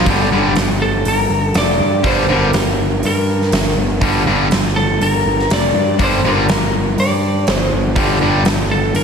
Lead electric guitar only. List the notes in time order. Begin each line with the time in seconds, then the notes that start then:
0.82 A4
1.08 A#4
1.45 A4
1.58 D5
2.07 C5
2.32 A#4
3.06 A#4
4.76 A4
5.03 A#4
5.53 D5
6.04 C5
6.28 A#4
7.00 D5
7.51 C5
8.71 A4
8.96 A#4